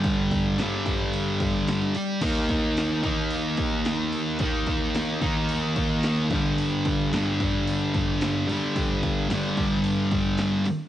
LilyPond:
<<
  \new Staff \with { instrumentName = "Distorted electric guitar" } { \clef bass \time 4/4 \key g \minor \tempo 4 = 110 <g, d g>4 <g, d g>2~ <g, d g>8 r8 | <ees bes ees'>4. <ees bes ees'>2~ <ees bes ees'>8 | <ees bes ees'>4. <ees bes ees'>2 <g, d g>8~ | <g, d g>4 <g, d g>2~ <g, d g>8 <g, d g>8~ |
<g, d g>4 <g, d g>2~ <g, d g>8 r8 | }
  \new DrumStaff \with { instrumentName = "Drums" } \drummode { \time 4/4 <hho bd>8 <hho bd>8 <hho sn>8 <hho bd>8 hho8 <hho bd>8 <hho sn>8 hho8 | <cymc bd>8 <hho bd>8 <hho sn>8 <hho bd>8 hho8 <hho bd>8 <hho sn>8 hho8 | <hho bd>8 <hho bd>8 <hho sn>8 <hho bd>8 hho8 <hho bd>8 <hho sn>8 <hho bd>8 | hho8 <hho bd>8 <hho sn>8 <hho bd>8 hho8 <hho bd>8 <hho sn>8 hho8 |
<hho bd>8 <hho bd>8 <hho sn>8 <hho bd>8 hho8 <hho bd>8 <hho sn>8 hho8 | }
>>